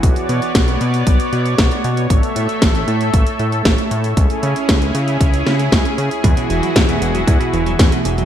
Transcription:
Already playing: analog synth pad F#4
0.03 analog synth bass B1, analog synth pad B3 C#5 D5, kick, closed hi-hat
0.16 closed hi-hat
0.29 analog synth bass B2, closed hi-hat
0.42 closed hi-hat
0.55 analog synth bass B1, kick, snare, closed hi-hat
0.68 closed hi-hat
0.81 analog synth bass B2, closed hi-hat
0.94 closed hi-hat
1.07 analog synth bass B1, kick, closed hi-hat
1.20 closed hi-hat
1.33 analog synth bass B2, closed hi-hat
1.46 closed hi-hat
1.58 analog synth bass B1, kick, snare, closed hi-hat
1.71 closed hi-hat
1.84 analog synth bass B2, closed hi-hat
1.97 closed hi-hat
2.10 analog synth bass A1, analog synth pad A3 A4 E5, kick, closed hi-hat
2.23 closed hi-hat
2.36 analog synth bass A2, closed hi-hat
2.49 closed hi-hat
2.62 analog synth bass A1, kick, snare, closed hi-hat
2.75 closed hi-hat
2.88 analog synth bass A2, closed hi-hat
3.01 closed hi-hat
3.14 analog synth bass A1, kick, closed hi-hat
3.27 closed hi-hat
3.39 analog synth bass A2, closed hi-hat
3.52 closed hi-hat
3.65 analog synth bass A1, kick, snare, closed hi-hat
3.78 closed hi-hat
3.91 analog synth bass A2, closed hi-hat
4.04 closed hi-hat
4.17 analog synth bass C#2, analog synth pad C#4 E4 G#4, kick, closed hi-hat
4.30 closed hi-hat
4.43 analog synth bass C#3, closed hi-hat
4.56 closed hi-hat
4.69 analog synth bass C#2, kick, snare, closed hi-hat
4.82 closed hi-hat
4.95 analog synth bass C#3, closed hi-hat
5.08 closed hi-hat
5.21 analog synth bass C#2, kick, closed hi-hat
5.34 closed hi-hat
5.46 analog synth bass C#3, snare, closed hi-hat
5.59 closed hi-hat
5.72 analog synth bass C#2, kick, snare, closed hi-hat
5.85 closed hi-hat
5.98 analog synth bass C#3, closed hi-hat
6.11 closed hi-hat
6.24 analog synth bass E2, clean electric guitar G#2, analog synth pad E3 E4 F#4, kick, closed hi-hat
6.37 clean electric guitar B2, closed hi-hat
6.50 analog synth bass E1, clean electric guitar E3, closed hi-hat
6.63 clean electric guitar F#3, closed hi-hat
6.76 analog synth bass E2, clean electric guitar G#2, kick, snare, closed hi-hat
6.89 clean electric guitar B2, closed hi-hat
7.02 analog synth bass E1, clean electric guitar E3, closed hi-hat
7.15 clean electric guitar F#3, closed hi-hat
7.27 analog synth bass E2, clean electric guitar G#2, kick, closed hi-hat
7.40 clean electric guitar B2, closed hi-hat
7.53 analog synth bass E1, clean electric guitar E3, closed hi-hat
7.66 clean electric guitar F#3, closed hi-hat
7.79 analog synth bass E2, clean electric guitar G#2, kick, snare, closed hi-hat
7.92 clean electric guitar B2, closed hi-hat
8.05 analog synth bass E1, clean electric guitar E3, closed hi-hat
8.18 clean electric guitar F#3, closed hi-hat

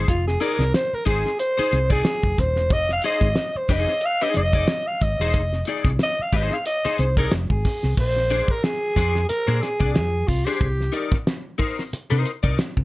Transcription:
Already playing: clean electric guitar D#4 G#4 C5
0.08 fingered electric bass F1, alto saxophone F4, kick, closed hi-hat
0.27 alto saxophone G#4, snare
0.41 clean electric guitar D#4 G#4 D5, alto saxophone A#4, closed hi-hat
0.59 fingered electric bass C2, snare
0.74 alto saxophone C5, snare, closed hi-hat
0.93 alto saxophone A#4, muted fingered electric bass stroke
1.06 fingered electric bass G#1, clean electric guitar D#4 G#4 C5, alto saxophone G#4, kick, closed hi-hat
1.26 snare
1.39 alto saxophone C5, closed hi-hat
1.58 clean electric guitar D#4 G#4 C5, muted fingered electric bass stroke
1.72 fingered electric bass C2, closed hi-hat
1.90 clean electric guitar D#4 G#4 D5, alto saxophone G#4, kick
2.05 snare, closed hi-hat
2.23 fingered electric bass F1, kick
2.38 fingered electric bass D#1, alto saxophone C5, kick, snare, closed hi-hat
2.56 fingered electric bass E1, snare
2.70 fingered electric bass F1, alto saxophone D#5, kick, closed hi-hat
2.89 alto saxophone F5, snare
3.02 clean electric guitar D#4 G#4 C5, alto saxophone D#5, closed hi-hat
3.21 fingered electric bass G#1, kick, snare
3.36 snare, closed hi-hat
3.55 alto saxophone C5, muted fingered electric bass stroke
3.68 fingered electric bass F1, clean electric guitar D#4 G#4 C5, alto saxophone D#5, kick, snare, open hi-hat
3.88 snare
4.01 closed hi-hat
4.05 alto saxophone F5
4.21 clean electric guitar D#4 G#4 C5, alto saxophone D#5
4.34 fingered electric bass F1, alto saxophone D#5, snare, closed hi-hat
4.53 clean electric guitar D#4 G#4 D5, kick
4.67 snare, closed hi-hat
4.87 alto saxophone F5
5.01 fingered electric bass G#1, alto saxophone D#5, kick, closed hi-hat
5.20 fingered electric bass E1, clean electric guitar D#4 G#4 C5
5.34 fingered electric bass F1, kick, closed hi-hat
5.53 snare
5.65 clean electric guitar D#4 G#4 D5, closed hi-hat
5.85 fingered electric bass C2, kick, snare
5.99 alto saxophone D#5, snare, closed hi-hat
6.19 alto saxophone F5, muted fingered electric bass stroke
6.33 fingered electric bass G#1, clean electric guitar D#4 G#4 C5, alto saxophone D#5, kick, closed hi-hat
6.51 alto saxophone F5, snare
6.66 alto saxophone D#5, closed hi-hat
6.85 clean electric guitar D#4 G#4 C5, muted fingered electric bass stroke
6.98 fingered electric bass C2, alto saxophone C5, closed hi-hat
7.17 clean electric guitar D#4 G#4 D5, alto saxophone A#4, kick
7.31 fingered electric bass F1, snare, closed hi-hat
7.50 fingered electric bass G#1, alto saxophone G#4, kick
7.65 kick, snare, open hi-hat
7.83 fingered electric bass C2, snare
7.97 fingered electric bass A#1, alto saxophone C5, kick, crash
8.16 snare
8.30 clean electric guitar D4 G#4 C5, closed hi-hat
8.48 alto saxophone A#4, kick
8.64 alto saxophone G#4, snare, closed hi-hat
8.96 fingered electric bass F2, clean electric guitar D4 G#4 C5, kick, snare, closed hi-hat
9.15 snare
9.29 alto saxophone A#4, muted fingered electric bass stroke, closed hi-hat
9.47 fingered electric bass A#2, clean electric guitar D4 G#4 C5
9.62 alto saxophone G#4, snare, closed hi-hat
9.80 fingered electric bass C2, clean electric guitar D4 G#4 D5, kick
9.94 fingered electric bass F2, alto saxophone G#4, snare, closed hi-hat
10.27 fingered electric bass C2, alto saxophone F4, kick, open hi-hat
10.45 clean electric guitar D4 G#4 C5, alto saxophone G4
10.61 fingered electric bass C2, kick, closed hi-hat
10.81 snare
10.92 clean electric guitar D#4 A#4 D5, closed hi-hat
11.12 muted fingered electric bass stroke, kick, snare
11.27 snare, closed hi-hat
11.58 clean electric guitar D#4 A#4 C5, kick, open hi-hat
11.79 snare
11.93 muted fingered electric bass stroke, closed hi-hat
12.10 fingered electric bass C3, clean electric guitar D#4 A#4 C5
12.25 closed hi-hat
12.43 fingered electric bass C2, clean electric guitar D#4 A#4 D5, kick
12.59 snare, closed hi-hat
12.77 fingered electric bass C2, kick

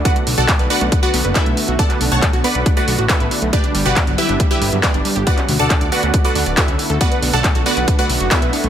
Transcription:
Already playing: analog synth pad D3 B3
0.05 analog synth pad A3 F#4, synth pluck D4 F#4 B4 D5 F#5, kick, closed hi-hat
0.16 synth pluck A3, closed hi-hat
0.27 analog synth bass B1, open hi-hat
0.38 analog synth bass B1, synth pluck F#4 A4 D5 F#5 A5, mid tom
0.48 synth pluck B3, kick, clap, closed hi-hat
0.59 analog synth bass B1, synth pluck B4, closed hi-hat
0.70 synth pluck D4 F#4 B4 D5 F#5, open hi-hat
0.81 analog synth bass B1, synth pluck A3, closed hi-hat
0.92 kick, closed hi-hat
1.03 synth pluck F#4 B4 D5 F#5, closed hi-hat
1.14 analog synth bass B1, synth pluck B3, open hi-hat
1.25 analog synth bass F#1, synth pluck B4, closed hi-hat
1.35 synth pluck D4 E4 A4 B4 E5, kick, clap, closed hi-hat
1.46 analog synth bass B1, synth pluck A3, closed hi-hat
1.57 open hi-hat
1.68 analog synth bass B1, synth pluck F#4, closed hi-hat
1.79 synth pluck B3 A4 D5 F#5 A5, kick, closed hi-hat
1.90 synth pluck B4, clap, closed hi-hat
2.01 analog synth bass B1, synth pluck D4, open hi-hat, mid tom
2.11 analog synth bass B1, synth pluck A3 C#5 F#5 A5 C#6, closed hi-hat, mid tom
2.22 kick, clap, closed hi-hat
2.33 analog synth bass B1, synth pluck F#4, closed hi-hat
2.44 synth pluck B3 B4 D5 F#5 B5, open hi-hat
2.55 analog synth bass B1, synth pluck B4, closed hi-hat
2.66 synth pluck D4, kick, closed hi-hat
2.77 synth pluck A3 F#4 B4 D5 F#5, closed hi-hat
2.88 analog synth bass B1, open hi-hat
2.98 analog synth bass A1, synth pluck F#4, closed hi-hat
3.09 synth pluck B3 E4 A4 B4 E5, kick, clap, closed hi-hat
3.20 analog synth bass A1, synth pluck B4, closed hi-hat
3.31 synth pluck D4, open hi-hat
3.42 analog synth bass B1, synth pluck A3, closed hi-hat
3.53 analog synth pad G3 G4, synth pluck D4 G4 B4 D5, kick, closed hi-hat
3.64 synth pluck D4, closed hi-hat
3.74 analog synth bass G1, synth pluck G3, open hi-hat
3.85 analog synth bass G1, synth pluck F#4 G4 B4 D5 F#5, closed hi-hat, mid tom
3.96 synth pluck B3, kick, clap, closed hi-hat
4.07 analog synth bass G1, synth pluck F#3, closed hi-hat
4.18 synth pluck E4 G4 B4 E5, open hi-hat
4.29 analog synth bass G1, synth pluck D4, closed hi-hat
4.40 synth pluck G3, kick, closed hi-hat
4.51 synth pluck E4 G4 B4 E5, closed hi-hat
4.62 analog synth bass G1, synth pluck B3, open hi-hat
4.72 analog synth bass G2, synth pluck F#3, closed hi-hat
4.83 synth pluck D4 G4 B4 D5, kick, clap, closed hi-hat
4.94 analog synth bass G1, synth pluck D4, closed hi-hat
5.05 synth pluck G3, open hi-hat
5.16 analog synth bass G1, synth pluck G4, closed hi-hat
5.27 analog synth pad A3 F#4, synth pluck F#4 B4 D5 F#5, kick, closed hi-hat
5.38 synth pluck C#4, clap, closed hi-hat
5.49 analog synth bass D2, open hi-hat, mid tom
5.59 analog synth bass D2, synth pluck A4 D5 F#5 A5, closed hi-hat, mid tom
5.70 synth pluck D4, kick, clap, closed hi-hat
5.81 analog synth bass D2, synth pluck D5, closed hi-hat
5.92 synth pluck F#4 B4 D5 F#5, open hi-hat
6.03 analog synth bass D2, synth pluck C#4, closed hi-hat
6.14 kick, closed hi-hat
6.25 synth pluck F#4 A4 B4 D5 F#5, closed hi-hat
6.35 analog synth bass D2, synth pluck D4, open hi-hat
6.46 analog synth bass D1, synth pluck D5, closed hi-hat
6.57 synth pluck E4 F#4 A4 B4 E5, kick, clap, closed hi-hat
6.68 analog synth bass D2, synth pluck C#4, closed hi-hat
6.79 open hi-hat
6.90 analog synth bass D2, synth pluck A4, closed hi-hat
7.01 analog synth pad D3 A3 B3, synth pluck B3 F#4 B4 D5 F#5, kick, closed hi-hat
7.12 synth pluck B4, closed hi-hat
7.22 analog synth bass B1, synth pluck D4, open hi-hat
7.33 analog synth bass B1, synth pluck A3 A4 D5 F#5 A5, closed hi-hat, mid tom
7.44 kick, clap, closed hi-hat
7.55 analog synth bass B1, synth pluck F#4, closed hi-hat
7.66 synth pluck B3 F#4 B4 D5 F#5, open hi-hat
7.77 analog synth bass B1, synth pluck B4, closed hi-hat
7.88 synth pluck D4, kick, closed hi-hat
7.99 synth pluck A3 F#4 B4 D5 F#5, closed hi-hat
8.09 analog synth bass B1, open hi-hat
8.20 analog synth bass F#1, synth pluck F#4, closed hi-hat
8.31 synth pluck B3 E4 A4 B4 E5, kick, clap, closed hi-hat
8.42 analog synth bass B1, synth pluck B4, closed hi-hat
8.53 synth pluck D4, open hi-hat
8.64 analog synth bass B1, synth pluck A3, closed hi-hat

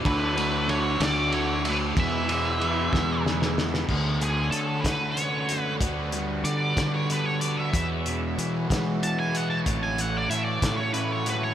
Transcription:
Already playing: harmonium D4
0.03 fingered electric bass D2, distorted electric guitar D3 A3 D4, harmonium F#3 A3 F#4 A4, lead electric guitar B4, kick, ride
0.34 distorted electric guitar D4, ride
0.38 distorted electric guitar A3
0.68 distorted electric guitar D3 A3 D4, lead electric guitar C#5, ride
1.00 fingered electric bass D2, distorted electric guitar A3 D4, lead electric guitar D5, snare, ride
1.32 distorted electric guitar D3 A3 D4, lead electric guitar C#5, ride
1.65 distorted electric guitar A3 D4, lead electric guitar B4, ride
1.96 distorted electric guitar E2 B2 E3, fingered electric bass E2, harmonium G#3 B3 E4 G#4 B4, lead electric guitar E5, kick, ride
2.28 distorted electric guitar B2 E3, ride
2.60 distorted electric guitar E2 B2 E3, ride
2.91 fingered electric bass E2, distorted electric guitar B2 E3, kick, snare
3.23 distorted electric guitar E2 B2 E3, snare
3.42 snare
3.56 distorted electric guitar B2 E3, snare
3.74 snare
3.88 fingered electric bass D2, distorted electric guitar D3, harmonium D3 A3 C#4 F#4 C#5, kick, crash
4.20 distorted electric guitar A3, lead electric guitar G#4, closed hi-hat
4.51 fingered electric bass D3, distorted electric guitar D3, lead electric guitar A4, closed hi-hat
4.80 fingered electric bass D3, lead electric guitar B4, kick
4.85 distorted electric guitar A3, snare, closed hi-hat
5.11 lead electric guitar C#5
5.16 distorted electric guitar C#4, closed hi-hat
5.48 distorted electric guitar F#4, closed hi-hat
5.59 lead electric guitar B4
5.78 fingered electric bass D2, distorted electric guitar D3, harmonium G3 B3 B4, kick, closed hi-hat
6.12 distorted electric guitar G3, closed hi-hat
6.43 fingered electric bass D3, distorted electric guitar D3, lead electric guitar D5, closed hi-hat
6.77 fingered electric bass D3, distorted electric guitar G3, kick, snare, closed hi-hat
6.95 lead electric guitar C#5
7.08 distorted electric guitar B3, closed hi-hat
7.12 lead electric guitar B4
7.25 lead electric guitar C#5
7.40 distorted electric guitar F#4, lead electric guitar D5, closed hi-hat
7.57 lead electric guitar E5
7.73 fingered electric bass E2, distorted electric guitar E2, harmonium F#3 G#3 E4, kick, closed hi-hat
8.06 distorted electric guitar B2, closed hi-hat
8.38 fingered electric bass E3, distorted electric guitar E3, closed hi-hat
8.70 fingered electric bass E3, distorted electric guitar G#3, kick, snare, closed hi-hat
9.02 distorted electric guitar B3, lead electric guitar A5, closed hi-hat
9.19 lead electric guitar G#5
9.34 distorted electric guitar F#4, lead electric guitar F#5, closed hi-hat
9.50 lead electric guitar A5
9.65 fingered electric bass A1, distorted electric guitar A2, harmonium C#3 A3, kick, closed hi-hat
9.83 lead electric guitar G#5
9.98 distorted electric guitar E3, lead electric guitar F#5, closed hi-hat
10.17 lead electric guitar D5
10.29 fingered electric bass A2, distorted electric guitar E3, lead electric guitar E5, closed hi-hat
10.44 lead electric guitar D5
10.62 fingered electric bass A2, distorted electric guitar A3, kick, snare, closed hi-hat
10.76 lead electric guitar C#5
10.93 distorted electric guitar C#4, lead electric guitar B4, closed hi-hat
11.12 lead electric guitar C#5
11.26 distorted electric guitar F#4, lead electric guitar B4, closed hi-hat
11.44 lead electric guitar C#5

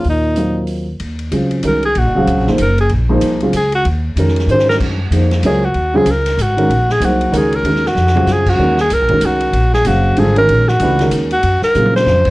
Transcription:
0.04 upright bass D#2, trombone A#2, open hi-hat
0.10 alto saxophone D#4
0.36 grand piano F#3 C4 F4 A#4 D#5, closed hi-hat
0.67 open hi-hat
1.00 upright bass D#2, ride
1.19 ride
1.31 upright bass C#2, grand piano C#3 F#3 C4 F4 G#4, hi-hat pedal, ride
1.51 ride
1.63 upright bass C2, grand piano D#3 G#3 C#4 F#4 A#4, hi-hat pedal, ride
1.67 alto saxophone A#4
1.83 alto saxophone G#4, ride
1.95 upright bass A#1, alto saxophone F#4, ride
2.05 upright bass F#1
2.15 upright bass D#1, grand piano C#3 F#3 C4 G#4 F5
2.27 upright bass C#2, hi-hat pedal, ride
2.37 upright bass A#1
2.47 upright bass F#1, grand piano F3 A#3 D#4 G#4 C5, snare
2.58 upright bass F#1, hi-hat pedal, ride
2.62 alto saxophone A#4
2.78 alto saxophone G#4, ride
2.89 upright bass A#1, ride
3.09 grand piano F3 A#3 D#4 G#4 C5
3.21 upright bass C2, hi-hat pedal, ride
3.41 grand piano C#3 F#3 C4 F4 G#4, ride
3.53 upright bass C#2, alto saxophone G#4, hi-hat pedal, ride
3.72 alto saxophone F#4, ride
3.85 upright bass D#2, ride
4.16 upright bass F2, grand piano D#3 G#3 C#4 F#4 A#4, hi-hat pedal, ride
4.28 snare
4.36 snare, ride
4.47 upright bass G#2, grand piano D#3 G#3 C#4 F#4 C5, hi-hat pedal
4.51 alto saxophone C5
4.59 snare
4.69 alto saxophone A#4, snare
4.80 upright bass F#2, kick, crash
5.10 upright bass F2, grand piano F3 A#3 D#4 G#4 C5, hi-hat pedal, ride
5.31 snare, ride
5.43 upright bass C#2, grand piano F#3 C4 F4 A#4 C#5, alto saxophone G#4, hi-hat pedal, ride
5.65 alto saxophone F#4
5.74 upright bass D#2, ride
5.94 grand piano C#3 F#3 C4 F4 G#4, alto saxophone G#4
6.06 upright bass C#2, hi-hat pedal, ride
6.10 alto saxophone A#4
6.26 snare, ride
6.37 upright bass G#1, hi-hat pedal
6.42 alto saxophone F#4
6.57 grand piano D#3 G#3 C#4 F#4 A#4, ride
6.69 upright bass A#1, ride
6.89 alto saxophone G#4, snare
7.00 upright bass C2, grand piano F#3 A#3 D#4 G#4 C5, hi-hat pedal, ride
7.05 alto saxophone F#4
7.21 ride
7.32 upright bass C#2, grand piano D#3 G#3 C#4 F#4 A#4, hi-hat pedal, ride
7.37 alto saxophone G#4
7.53 alto saxophone A#4, ride
7.63 upright bass D#2, grand piano D#3 G#3 C#4 F#4 A#4, ride
7.76 snare
7.86 alto saxophone F#4, snare
7.95 upright bass F2, snare
8.07 snare
8.15 grand piano C#3 F#3 C4 F4 G#4, floor tom
8.27 upright bass F#2, snare, hi-hat pedal
8.32 alto saxophone G#4
8.47 alto saxophone F#4, kick, crash
8.58 upright bass D#2, grand piano D#3 G#3 C#4 F#4 A#4
8.78 alto saxophone G#4, snare
8.90 upright bass C#2, alto saxophone A#4, hi-hat pedal, ride
9.02 upright bass A#1
9.09 upright bass F#1, grand piano D#3 G#3 C#4 F#4 A#4, kick, ride
9.21 upright bass C2, hi-hat pedal, ride
9.26 alto saxophone F#4
9.41 ride
9.53 upright bass A#1, ride
9.73 alto saxophone G#4, snare
9.85 upright bass F#1, grand piano C#3 F#3 C4 G#4 F5, alto saxophone F#4, hi-hat pedal, ride
10.16 upright bass G#1, grand piano D3 G3 C4 F4 A4, alto saxophone G#4, ride
10.36 grand piano D#3 G#3 C#4 F#4 A#4, alto saxophone A#4, ride
10.49 upright bass A#1, ride
10.68 alto saxophone F#4, snare
10.80 upright bass C#2, grand piano E3 A3 D4 G4 B4, hi-hat pedal, ride
10.99 grand piano D#3 G#3 C#4 F#4 A#4, snare, ride
11.11 upright bass D#2, hi-hat pedal, ride
11.31 alto saxophone F#4, ride
11.43 upright bass F#2, ride
11.62 alto saxophone A#4, muted upright bass stroke, snare
11.74 upright bass A#2, grand piano C#3 F#3 C4 F4 G#4, hi-hat pedal
11.86 high tom
11.96 alto saxophone C5, snare
12.06 upright bass F2, snare
12.25 kick, crash

